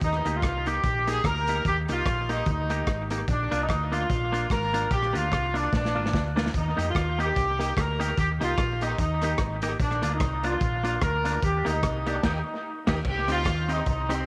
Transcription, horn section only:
0.03 0.32 D#4 loud
0.35 0.67 F4 medium
0.67 1.07 G4 loud
1.08 1.25 G#4 loud
1.25 1.65 A#4 loud
1.66 1.77 G4 loud
1.91 2.28 F4 loud
2.31 2.48 D#4 loud
2.49 3.08 D#4 medium
3.30 3.59 D4 loud
3.62 3.93 D#4 medium
3.93 4.51 F4 loud
4.51 4.89 A#4 loud
4.92 5.13 G4 loud
5.16 5.56 F4 loud
5.56 5.73 D4 medium
5.75 6.34 D4 medium
6.56 6.85 D#4 medium
6.89 7.20 F4 medium
7.20 7.77 G4 loud
7.79 8.18 A#4 medium
8.19 8.29 G4 medium
8.43 8.80 F4 loud
8.83 8.98 D#4 medium
8.99 9.59 D#4 medium
9.81 10.11 D4 medium
10.13 10.45 D#4 medium
10.45 11.02 F4 loud
11.02 11.40 A#4 medium
11.44 11.67 G4 medium
11.68 12.08 D#4 medium
12.07 12.24 D4 medium
12.25 12.89 D#4 medium
13.08 13.29 G4 loud
13.31 13.68 F4 loud
13.71 13.87 D#4 loud
13.88 14.09 D#4 medium
14.12 14.26 C4 loud

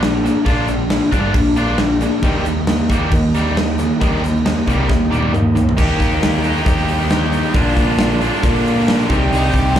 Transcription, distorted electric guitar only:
0.03 0.23 A#3 medium
0.03 0.23 D4 loud
0.24 0.44 A#3 medium
0.24 0.45 D4 medium
0.45 0.67 A#3 medium
0.45 0.67 D4 medium
0.45 0.68 F4 medium
0.68 0.89 A#3 medium
0.68 0.89 D4 medium
0.91 1.10 A#3 medium
0.91 1.10 D4 medium
1.11 1.33 A#3 medium
1.11 1.34 D4 medium
1.11 1.34 F4 loud
1.34 1.55 A#3 medium
1.34 1.55 D4 loud
1.56 1.77 A#3 medium
1.56 1.78 D4 loud
1.56 1.79 F4 loud
1.79 1.99 A#3 medium
1.79 1.99 D4 medium
2.01 2.22 A#3 medium
2.01 2.22 D4 medium
2.24 2.44 D#3 medium
2.24 2.45 G3 medium
2.24 2.45 A#3 medium
2.46 2.66 D#3 medium
2.46 2.67 A#3 medium
2.68 2.88 D#3 medium
2.68 2.88 A#3 medium
2.90 3.11 D#3 medium
2.90 3.12 G3 loud
2.90 3.12 A#3 medium
3.12 3.33 D#3 medium
3.12 3.33 A#3 medium
3.35 3.56 D#3 medium
3.35 3.56 G3 loud
3.35 3.56 A#3 loud
3.58 3.77 D#3 medium
3.58 3.78 A#3 medium
3.79 3.99 D#3 medium
3.79 3.99 A#3 medium
4.00 4.22 D#3 medium
4.00 4.22 G3 medium
4.00 4.22 A#3 medium
4.23 4.43 D#3 medium
4.23 4.44 A#3 medium
4.45 4.65 D#3 medium
4.45 4.65 A#3 medium
4.67 4.88 D#3 medium
4.67 4.89 G3 loud
4.67 4.88 A#3 loud
4.90 5.10 D#3 medium
4.90 5.10 A#3 medium
5.11 5.32 D#3 loud
5.11 5.33 G3 loud
5.11 5.32 A#3 medium
5.34 5.54 D#3 medium
5.34 5.54 A#3 medium
5.56 5.76 D#3 medium
5.56 5.76 A#3 medium
5.77 6.42 D#3 medium
5.77 6.44 A#3 medium
5.77 6.43 D#4 medium
5.77 6.42 G4 loud
6.43 7.54 D#3 medium
6.43 7.53 A#3 medium
6.43 7.53 D#4 medium
6.43 7.53 G4 medium
7.53 8.19 A#2 medium
7.53 8.20 D3 medium
7.53 8.20 A#3 medium
7.53 8.21 D4 loud
7.53 8.19 F4 loud
8.21 9.09 A#2 medium
8.21 9.09 D3 medium
8.21 9.09 A#3 medium
8.21 9.10 D4 medium
8.21 9.08 F4 medium
9.09 9.75 C3 medium
9.09 9.75 D#3 medium
9.09 9.77 G3 loud
9.09 9.75 C4 loud
9.09 9.78 G4 loud
9.76 9.80 C3 medium

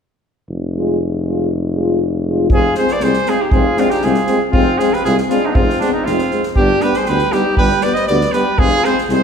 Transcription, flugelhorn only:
2.54 2.76 F4 medium
2.78 2.94 G#4 medium
2.92 3.05 B4 medium
3.04 3.31 G#4 medium
3.29 3.44 F4 medium
3.42 3.54 D#4 soft
3.52 3.80 F4 medium
3.78 3.93 D4 medium
3.91 4.05 D#4 medium
4.04 4.42 F4 medium
4.55 4.81 C4 medium
4.80 4.95 F4 medium
4.94 5.03 G4 medium
5.04 5.15 F4 medium
5.31 5.47 D4 medium
5.45 5.52 B3 soft
5.45 5.49 C4 medium
5.51 5.56 C4 soft
5.56 5.83 C4 medium
5.82 5.95 B3 medium
5.95 6.06 C4 medium
6.06 6.45 C4 medium
6.58 6.85 D4 medium
6.83 6.98 G4 medium
6.96 7.09 G#4 medium
7.08 7.35 G4 medium
7.33 7.57 D#4 medium
7.57 7.85 G4 medium
7.83 7.97 B4 medium
7.96 8.08 C5 medium
8.09 8.36 B4 medium
8.34 8.60 G4 medium
8.59 8.87 F4 medium
8.85 8.98 G#4 medium
9.10 9.23 G#4 medium

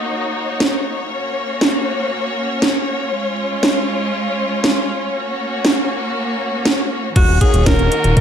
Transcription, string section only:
0.00 1.07 A#3 medium
0.00 1.09 D#4 medium
0.00 1.07 F#4 medium
0.00 7.12 C#5 medium
1.11 3.10 A#3 medium
1.11 7.12 C#4 medium
1.11 3.10 F#4 medium
3.12 5.12 G#3 medium
3.12 5.12 F4 medium
5.14 7.14 A#3 medium
5.14 7.14 F#4 medium
7.16 8.21 D#3 medium
7.16 8.21 A#3 medium
7.16 8.21 C#4 medium
7.16 8.21 F#4 medium

